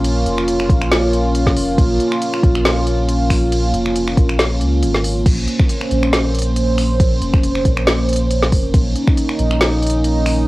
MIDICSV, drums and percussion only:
0, 0, Header, 1, 2, 480
1, 0, Start_track
1, 0, Key_signature, -5, "minor"
1, 0, Tempo, 434783
1, 47, Time_signature, 4, 2, 24, 8
1, 11567, End_track
2, 0, Start_track
2, 0, Title_t, "Drums"
2, 48, Note_on_c, 9, 42, 77
2, 48, Note_on_c, 9, 49, 67
2, 159, Note_off_c, 9, 42, 0
2, 159, Note_off_c, 9, 49, 0
2, 289, Note_on_c, 9, 42, 52
2, 399, Note_off_c, 9, 42, 0
2, 421, Note_on_c, 9, 26, 58
2, 529, Note_on_c, 9, 42, 79
2, 529, Note_on_c, 9, 49, 50
2, 531, Note_off_c, 9, 26, 0
2, 639, Note_off_c, 9, 42, 0
2, 639, Note_off_c, 9, 49, 0
2, 661, Note_on_c, 9, 26, 57
2, 768, Note_on_c, 9, 36, 104
2, 770, Note_on_c, 9, 42, 55
2, 771, Note_off_c, 9, 26, 0
2, 878, Note_off_c, 9, 36, 0
2, 881, Note_off_c, 9, 42, 0
2, 900, Note_on_c, 9, 26, 83
2, 1010, Note_off_c, 9, 26, 0
2, 1011, Note_on_c, 9, 38, 120
2, 1011, Note_on_c, 9, 42, 80
2, 1011, Note_on_c, 9, 49, 71
2, 1121, Note_off_c, 9, 38, 0
2, 1121, Note_off_c, 9, 42, 0
2, 1121, Note_off_c, 9, 49, 0
2, 1250, Note_on_c, 9, 42, 54
2, 1361, Note_off_c, 9, 42, 0
2, 1489, Note_on_c, 9, 42, 79
2, 1489, Note_on_c, 9, 49, 49
2, 1599, Note_off_c, 9, 42, 0
2, 1599, Note_off_c, 9, 49, 0
2, 1619, Note_on_c, 9, 36, 60
2, 1621, Note_on_c, 9, 38, 37
2, 1729, Note_off_c, 9, 36, 0
2, 1729, Note_on_c, 9, 46, 92
2, 1731, Note_off_c, 9, 38, 0
2, 1839, Note_off_c, 9, 46, 0
2, 1967, Note_on_c, 9, 36, 117
2, 1969, Note_on_c, 9, 42, 78
2, 1969, Note_on_c, 9, 49, 68
2, 2077, Note_off_c, 9, 36, 0
2, 2079, Note_off_c, 9, 42, 0
2, 2079, Note_off_c, 9, 49, 0
2, 2209, Note_on_c, 9, 42, 51
2, 2319, Note_off_c, 9, 42, 0
2, 2340, Note_on_c, 9, 26, 56
2, 2448, Note_on_c, 9, 42, 79
2, 2448, Note_on_c, 9, 49, 51
2, 2450, Note_off_c, 9, 26, 0
2, 2559, Note_off_c, 9, 42, 0
2, 2559, Note_off_c, 9, 49, 0
2, 2580, Note_on_c, 9, 26, 55
2, 2687, Note_on_c, 9, 36, 105
2, 2689, Note_on_c, 9, 42, 54
2, 2691, Note_off_c, 9, 26, 0
2, 2797, Note_off_c, 9, 36, 0
2, 2800, Note_off_c, 9, 42, 0
2, 2819, Note_on_c, 9, 26, 82
2, 2928, Note_on_c, 9, 38, 121
2, 2928, Note_on_c, 9, 42, 79
2, 2928, Note_on_c, 9, 49, 70
2, 2929, Note_off_c, 9, 26, 0
2, 3039, Note_off_c, 9, 38, 0
2, 3039, Note_off_c, 9, 42, 0
2, 3039, Note_off_c, 9, 49, 0
2, 3167, Note_on_c, 9, 42, 55
2, 3277, Note_off_c, 9, 42, 0
2, 3408, Note_on_c, 9, 42, 78
2, 3408, Note_on_c, 9, 49, 50
2, 3518, Note_off_c, 9, 42, 0
2, 3518, Note_off_c, 9, 49, 0
2, 3646, Note_on_c, 9, 26, 80
2, 3646, Note_on_c, 9, 46, 96
2, 3647, Note_on_c, 9, 36, 62
2, 3757, Note_off_c, 9, 26, 0
2, 3757, Note_off_c, 9, 36, 0
2, 3757, Note_off_c, 9, 46, 0
2, 3888, Note_on_c, 9, 42, 81
2, 3888, Note_on_c, 9, 49, 69
2, 3998, Note_off_c, 9, 42, 0
2, 3998, Note_off_c, 9, 49, 0
2, 4127, Note_on_c, 9, 42, 55
2, 4237, Note_off_c, 9, 42, 0
2, 4259, Note_on_c, 9, 26, 54
2, 4368, Note_on_c, 9, 42, 82
2, 4368, Note_on_c, 9, 49, 49
2, 4370, Note_off_c, 9, 26, 0
2, 4478, Note_off_c, 9, 42, 0
2, 4478, Note_off_c, 9, 49, 0
2, 4500, Note_on_c, 9, 26, 52
2, 4607, Note_on_c, 9, 36, 105
2, 4607, Note_on_c, 9, 42, 57
2, 4610, Note_off_c, 9, 26, 0
2, 4717, Note_off_c, 9, 36, 0
2, 4718, Note_off_c, 9, 42, 0
2, 4739, Note_on_c, 9, 26, 78
2, 4847, Note_on_c, 9, 38, 123
2, 4847, Note_on_c, 9, 42, 84
2, 4847, Note_on_c, 9, 49, 71
2, 4849, Note_off_c, 9, 26, 0
2, 4957, Note_off_c, 9, 38, 0
2, 4957, Note_off_c, 9, 42, 0
2, 4957, Note_off_c, 9, 49, 0
2, 5087, Note_on_c, 9, 42, 57
2, 5198, Note_off_c, 9, 42, 0
2, 5327, Note_on_c, 9, 42, 84
2, 5327, Note_on_c, 9, 49, 47
2, 5438, Note_off_c, 9, 42, 0
2, 5438, Note_off_c, 9, 49, 0
2, 5459, Note_on_c, 9, 38, 36
2, 5566, Note_on_c, 9, 46, 94
2, 5569, Note_off_c, 9, 38, 0
2, 5677, Note_off_c, 9, 46, 0
2, 5806, Note_on_c, 9, 36, 120
2, 5807, Note_on_c, 9, 42, 84
2, 5807, Note_on_c, 9, 49, 64
2, 5807, Note_on_c, 9, 57, 110
2, 5917, Note_off_c, 9, 36, 0
2, 5918, Note_off_c, 9, 42, 0
2, 5918, Note_off_c, 9, 49, 0
2, 5918, Note_off_c, 9, 57, 0
2, 6048, Note_on_c, 9, 42, 56
2, 6158, Note_off_c, 9, 42, 0
2, 6178, Note_on_c, 9, 26, 53
2, 6178, Note_on_c, 9, 36, 110
2, 6286, Note_on_c, 9, 42, 88
2, 6286, Note_on_c, 9, 49, 48
2, 6288, Note_off_c, 9, 26, 0
2, 6288, Note_off_c, 9, 36, 0
2, 6397, Note_off_c, 9, 42, 0
2, 6397, Note_off_c, 9, 49, 0
2, 6418, Note_on_c, 9, 26, 52
2, 6526, Note_on_c, 9, 42, 59
2, 6528, Note_off_c, 9, 26, 0
2, 6636, Note_off_c, 9, 42, 0
2, 6657, Note_on_c, 9, 26, 77
2, 6767, Note_on_c, 9, 38, 126
2, 6767, Note_on_c, 9, 42, 85
2, 6767, Note_on_c, 9, 49, 67
2, 6768, Note_off_c, 9, 26, 0
2, 6877, Note_off_c, 9, 38, 0
2, 6877, Note_off_c, 9, 42, 0
2, 6877, Note_off_c, 9, 49, 0
2, 7006, Note_on_c, 9, 42, 54
2, 7051, Note_off_c, 9, 42, 0
2, 7051, Note_on_c, 9, 42, 69
2, 7087, Note_off_c, 9, 42, 0
2, 7087, Note_on_c, 9, 42, 88
2, 7197, Note_off_c, 9, 42, 0
2, 7245, Note_on_c, 9, 42, 88
2, 7245, Note_on_c, 9, 49, 48
2, 7356, Note_off_c, 9, 42, 0
2, 7356, Note_off_c, 9, 49, 0
2, 7486, Note_on_c, 9, 26, 74
2, 7486, Note_on_c, 9, 46, 96
2, 7596, Note_off_c, 9, 26, 0
2, 7596, Note_off_c, 9, 46, 0
2, 7727, Note_on_c, 9, 36, 127
2, 7727, Note_on_c, 9, 42, 86
2, 7727, Note_on_c, 9, 49, 63
2, 7837, Note_off_c, 9, 42, 0
2, 7837, Note_off_c, 9, 49, 0
2, 7838, Note_off_c, 9, 36, 0
2, 7967, Note_on_c, 9, 42, 56
2, 8078, Note_off_c, 9, 42, 0
2, 8099, Note_on_c, 9, 26, 54
2, 8099, Note_on_c, 9, 36, 115
2, 8207, Note_on_c, 9, 42, 87
2, 8207, Note_on_c, 9, 49, 46
2, 8209, Note_off_c, 9, 36, 0
2, 8210, Note_off_c, 9, 26, 0
2, 8318, Note_off_c, 9, 42, 0
2, 8318, Note_off_c, 9, 49, 0
2, 8339, Note_on_c, 9, 26, 51
2, 8447, Note_on_c, 9, 36, 66
2, 8447, Note_on_c, 9, 42, 60
2, 8450, Note_off_c, 9, 26, 0
2, 8557, Note_off_c, 9, 42, 0
2, 8558, Note_off_c, 9, 36, 0
2, 8579, Note_on_c, 9, 26, 77
2, 8689, Note_on_c, 9, 38, 127
2, 8689, Note_on_c, 9, 42, 86
2, 8689, Note_on_c, 9, 49, 64
2, 8690, Note_off_c, 9, 26, 0
2, 8799, Note_off_c, 9, 38, 0
2, 8799, Note_off_c, 9, 42, 0
2, 8799, Note_off_c, 9, 49, 0
2, 8928, Note_on_c, 9, 42, 53
2, 8972, Note_off_c, 9, 42, 0
2, 8972, Note_on_c, 9, 42, 70
2, 9007, Note_off_c, 9, 42, 0
2, 9007, Note_on_c, 9, 42, 89
2, 9118, Note_off_c, 9, 42, 0
2, 9168, Note_on_c, 9, 42, 82
2, 9168, Note_on_c, 9, 49, 47
2, 9279, Note_off_c, 9, 42, 0
2, 9279, Note_off_c, 9, 49, 0
2, 9299, Note_on_c, 9, 38, 39
2, 9407, Note_on_c, 9, 36, 65
2, 9407, Note_on_c, 9, 46, 91
2, 9410, Note_off_c, 9, 38, 0
2, 9517, Note_off_c, 9, 46, 0
2, 9518, Note_off_c, 9, 36, 0
2, 9646, Note_on_c, 9, 42, 82
2, 9646, Note_on_c, 9, 49, 62
2, 9647, Note_on_c, 9, 36, 127
2, 9757, Note_off_c, 9, 42, 0
2, 9757, Note_off_c, 9, 49, 0
2, 9758, Note_off_c, 9, 36, 0
2, 9887, Note_on_c, 9, 42, 55
2, 9997, Note_off_c, 9, 42, 0
2, 10018, Note_on_c, 9, 36, 116
2, 10019, Note_on_c, 9, 26, 53
2, 10128, Note_on_c, 9, 42, 84
2, 10128, Note_on_c, 9, 49, 44
2, 10129, Note_off_c, 9, 26, 0
2, 10129, Note_off_c, 9, 36, 0
2, 10238, Note_off_c, 9, 42, 0
2, 10238, Note_off_c, 9, 49, 0
2, 10258, Note_on_c, 9, 26, 52
2, 10367, Note_on_c, 9, 42, 57
2, 10369, Note_off_c, 9, 26, 0
2, 10477, Note_off_c, 9, 42, 0
2, 10498, Note_on_c, 9, 26, 80
2, 10607, Note_on_c, 9, 38, 127
2, 10607, Note_on_c, 9, 42, 86
2, 10607, Note_on_c, 9, 49, 63
2, 10609, Note_off_c, 9, 26, 0
2, 10718, Note_off_c, 9, 38, 0
2, 10718, Note_off_c, 9, 42, 0
2, 10718, Note_off_c, 9, 49, 0
2, 10847, Note_on_c, 9, 42, 53
2, 10891, Note_off_c, 9, 42, 0
2, 10891, Note_on_c, 9, 42, 69
2, 10927, Note_off_c, 9, 42, 0
2, 10927, Note_on_c, 9, 42, 86
2, 11037, Note_off_c, 9, 42, 0
2, 11088, Note_on_c, 9, 42, 81
2, 11088, Note_on_c, 9, 49, 47
2, 11198, Note_off_c, 9, 42, 0
2, 11198, Note_off_c, 9, 49, 0
2, 11328, Note_on_c, 9, 26, 75
2, 11328, Note_on_c, 9, 46, 90
2, 11438, Note_off_c, 9, 26, 0
2, 11438, Note_off_c, 9, 46, 0
2, 11567, End_track
0, 0, End_of_file